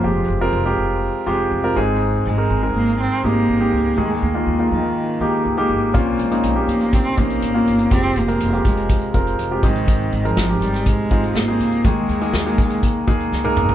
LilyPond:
<<
  \new Staff \with { instrumentName = "Grand piano" } { \time 4/4 \key aes \major \tempo 4 = 122 <aes c' f' g'>8 r16 <aes c' f' bes'>8 <aes c' f' g'>4 r16 <aes c' f' g'>8 r16 <aes c' f' bes'>16 <aes c' ees' aes'>8~ | <aes c' ees' aes'>8 r16 <aes c' ees' bes'>8 <aes c' ees' bes'>4 r16 <aes c' ees' g'>8 r16 <aes c' ees' g'>8 r16 | <aes bes ees' aes'>8 r16 <aes bes ees' f'>8 <aes bes ees' f'>4 r16 <aes bes ees' g'>8 r16 <aes bes ees' g'>8 r16 | <bes c' des' f'>8 r16 <bes c' des' ees'>8 <bes c' des' g'>4 r16 <bes c' des' ees'>8 r16 <bes c' des' f'>8 r16 |
<aes c' f' g'>8 r16 <aes c' f' bes'>8 <aes c' f' g'>4 r16 <aes c' f' bes'>8 r16 <aes c' f' g'>16 <aes c' ees' aes'>8~ | <aes c' ees' aes'>8 r16 <aes c' ees' bes'>8 <aes c' ees' g'>4 r16 <aes c' ees' f'>8 r16 <aes c' ees' aes'>8 r16 | <aes bes ees' aes'>8 r16 <aes bes ees' aes'>8 <aes bes ees' aes'>4 r16 <aes bes ees' aes'>8 r16 <aes bes ees' bes'>8 r16 | }
  \new Staff \with { instrumentName = "Grand piano" } { \clef bass \time 4/4 \key aes \major r2. r8 aes,8~ | aes,4 r2. | ees4. r2 r8 | bes,4. r2 r8 |
r2. r8 aes,8~ | aes,4 r2. | ees4. r2 r8 | }
  \new Staff \with { instrumentName = "Cello" } { \clef bass \time 4/4 \key aes \major f8 r2. r8 | r8 aes4 bes8 c'8 bes4. | aes8 bes4 ees4. r4 | r8 aes4 bes8 c'8 bes4. |
c'8 bes4 aes4. r8 ees8~ | ees8. f8. g8 aes4 bes4 | aes2. r4 | }
  \new Staff \with { instrumentName = "Upright bass" } { \clef bass \time 4/4 \key aes \major f,,8 f,,8 f,,8 f,,8. r16 f,,8 f,,8 aes,,8~ | aes,,8 aes,,8 aes,,8 aes,,8. r16 aes,,8 aes,,8 des,8 | ees,8 ees,8 ees,8 ees,8. r16 ees,8 des,8 aes,,8 | bes,,8 bes,,8 bes,,8 bes,,8. r16 bes,,8 aes,,8 g,,8 |
f,,8 f,,8 f,,8 f,,8. r16 f,,8 f,,8 aes,,8~ | aes,,8 aes,,8 aes,,8 aes,,8. r16 aes,,8 aes,,8 des,8 | ees,8 ees,8 ees,8 ees,8. r16 ees,8 des,8 aes,,8 | }
  \new DrumStaff \with { instrumentName = "Drums" } \drummode { \time 4/4 r4 r4 r4 r4 | r4 r4 r4 r4 | r4 r4 r4 r4 | <hh bd>8 hh16 hh16 hh8 hh16 hh16 <hh bd>8 <hh bd>16 hh16 hh8 hh16 hh16 |
<hh bd>8 hh16 hh16 hh16 hh16 <hh bd>16 hh16 <hh bd>16 hh16 <hh bd>16 hh16 hh8 <hh bd>16 hh16 | <hh bd>16 hh16 hh16 hh16 sn8 hh16 <hh sn>16 <hh bd>8 <hh bd>16 hh16 sn8 hh16 hh16 | <hh bd>8 hh16 hh16 sn16 hh16 <hh bd>16 hh16 <hh bd>8 <hh bd>16 hh16 sn16 tommh16 toml16 tomfh16 | }
>>